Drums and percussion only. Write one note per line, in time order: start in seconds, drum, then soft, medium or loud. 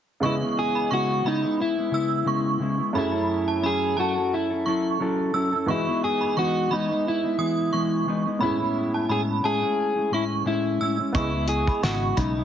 11.15 kick loud
11.15 closed hi-hat medium
11.48 closed hi-hat medium
11.67 kick medium
11.84 snare loud
11.84 closed hi-hat medium
12.17 kick medium
12.17 closed hi-hat medium